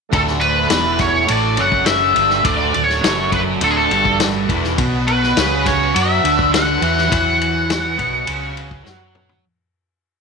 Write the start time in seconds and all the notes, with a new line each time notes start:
0.09 D1 D2 D3 A3 D4 F#4 A4, kick
0.13 A4, ride
0.27 snare
0.40 B4, ride
0.70 E1 E2 E3, snare, ride
0.99 C#5, kick, snare, ride
1.27 A1 A2 A3, ride
1.32 D5
1.57 F#1 F#2 F#3 F#5, ride
1.72 kick
1.86 E5, snare, ride
2.15 G1 G2 G3, ride
2.30 snare
2.44 D1 D2 D3 D5, kick, ride
2.74 D1 D2, ride
2.84 C#5
2.90 snare
3.03 F#1 F#2 F#3, snare, ride
3.32 B4, kick, ride
3.61 D1 D2 D3 A4, ride
3.71 G#4
3.77 A4
3.91 G1 G2 G3, ride
4.05 kick
4.20 snare, ride
4.49 E1 E2 E3, kick, ride
4.64 snare
4.76 B1 B2 F#3 B3 B4 F#5, kick, ride
5.07 B4, ride
5.23 snare
5.37 C#2 C#3 C#4, snare, ride
5.66 C#5, kick, snare, ride
5.94 F#2 F#3 F#4 E5, ride
6.24 D2 D3 D4, ride
6.39 kick
6.53 F#5, snare, ride
6.82 E2 E3 E4, ride
6.98 snare
7.10 E2 E3 E4 C#5 F#5, kick, ride
7.41 ride
7.70 snare, ride
7.97 B1 B2 B3, kick, ride
8.26 C#2 C#3 C#4, ride
8.57 ride
8.71 kick
8.84 F#2 F#3 F#4, snare
9.15 mid tom
9.29 floor tom